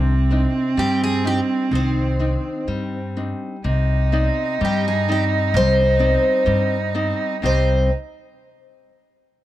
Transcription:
0.00 0.44 C2 loud
0.00 0.75 C3 medium
0.00 0.12 D#3 medium
0.00 3.17 C4 medium
0.00 0.12 D4 soft
0.31 1.06 C4 soft
0.31 1.06 D4 soft
0.31 1.06 D#4 medium
0.77 1.38 G2 medium
0.77 1.69 G3 medium
0.77 1.02 G4 loud
1.04 1.26 G#4 loud
1.24 2.00 C4 medium
1.24 2.00 D4 soft
1.24 2.01 D#4 medium
1.24 1.40 G4 medium
1.71 2.34 C2 loud
1.71 2.66 D#3 medium
1.71 3.15 C4 medium
2.19 2.97 C4 soft
2.19 2.98 D4 soft
2.19 2.98 D#4 soft
2.68 3.31 G2 medium
2.68 3.62 G3 medium
3.17 3.55 C4 soft
3.17 3.55 D4 soft
3.17 3.56 D#4 soft
3.64 4.27 C2 loud
3.64 4.58 C3 medium
3.64 7.40 D#4 loud
4.12 4.89 C4 medium
4.12 4.89 D#4 medium
4.12 4.89 D5 soft
4.61 5.55 G2 medium
4.61 5.52 G3 medium
4.61 4.87 G4 medium
4.88 5.11 G#4 medium
5.08 5.82 C4 soft
5.08 5.82 D#4 medium
5.08 5.24 G4 medium
5.08 5.83 D5 soft
5.54 6.15 C2 loud
5.54 6.45 G3 medium
5.54 6.92 C5 loud
5.99 6.76 C4 medium
5.99 6.76 D#4 medium
5.99 6.76 D5 medium
6.46 7.10 G2 loud
6.46 7.40 G3 medium
6.95 7.34 C4 soft
6.95 7.34 D#4 medium
6.95 7.34 D5 soft
7.42 7.89 C2 medium
7.42 7.88 C3 medium
7.42 7.88 G3 soft
7.42 7.89 C4 soft
7.42 7.89 D#4 medium
7.42 7.89 D#4 soft
7.42 7.89 G4 medium
7.42 7.90 C5 medium

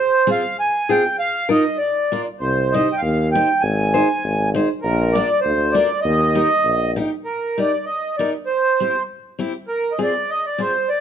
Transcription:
0.00 0.30 C5 loud
0.27 0.41 C4 medium
0.27 0.41 F4 medium
0.27 0.41 G#4 medium
0.31 0.57 F5 loud
0.60 0.92 G#5 loud
0.89 1.03 C4 medium
0.89 1.02 F4 medium
0.89 1.03 G#4 medium
0.89 1.17 G5 loud
1.19 1.49 F5 loud
1.49 1.63 D#4 medium
1.49 1.63 F4 medium
1.49 1.63 A#4 medium
1.49 1.78 D#5 medium
1.78 2.22 D5 medium
2.12 2.25 D4 medium
2.12 2.25 F4 soft
2.12 2.25 A#4 medium
2.40 2.80 C2 loud
2.40 2.74 C5 medium
2.72 2.87 D#4 medium
2.72 2.87 G4 medium
2.72 2.87 C5 medium
2.72 2.96 D#5 medium
2.92 3.01 G5 medium
2.98 3.30 F5 medium
3.02 3.42 D#2 loud
3.32 3.48 D#4 medium
3.32 3.47 G4 medium
3.32 3.62 G5 medium
3.36 3.48 C5 medium
3.60 4.02 G#1 loud
3.60 4.49 G#5 loud
3.94 4.07 D#4 medium
3.94 4.07 G#4 medium
3.94 4.07 C5 medium
4.24 4.63 G#1 loud
4.54 4.67 D#4 medium
4.54 4.68 G#4 medium
4.54 4.68 C5 medium
4.82 5.22 A#1 loud
4.82 5.15 A#4 loud
5.12 5.28 D4 medium
5.12 5.28 F4 medium
5.12 5.28 A#4 medium
5.12 5.40 D5 loud
5.41 5.83 D2 loud
5.41 5.75 C5 medium
5.72 5.88 D4 medium
5.72 5.88 F4 medium
5.72 5.88 A#4 medium
5.72 6.00 D5 medium
6.01 6.44 D#2 loud
6.01 6.92 D#5 loud
6.35 6.48 D#4 medium
6.35 6.48 G4 medium
6.35 6.49 A#4 medium
6.65 7.04 A#1 medium
6.96 7.09 D#4 medium
6.96 7.10 G4 medium
6.96 7.10 A#4 medium
7.25 7.58 A#4 medium
7.58 7.71 D#4 medium
7.58 7.71 G4 medium
7.58 7.71 A#4 medium
7.58 7.85 D5 medium
7.86 8.16 D#5 medium
8.17 8.32 D#4 medium
8.17 8.32 G4 soft
8.17 8.32 A#4 medium
8.17 8.30 D5 medium
8.46 9.03 C5 loud
8.80 8.92 C4 medium
8.80 8.93 E4 soft
8.80 8.93 G4 medium
9.39 9.51 C4 medium
9.39 9.52 E4 medium
9.39 9.52 G4 medium
9.68 9.93 A#4 medium
9.92 9.99 D#5 medium
9.98 10.12 C4 medium
9.98 10.12 F4 medium
9.98 10.11 G#4 medium
10.03 10.30 D5 loud
10.30 10.45 D#5 loud
10.46 10.61 D5 medium
10.58 10.72 C4 medium
10.58 10.72 F4 medium
10.58 10.72 G#4 medium
10.58 10.89 C5 medium
10.89 11.01 D5 loud

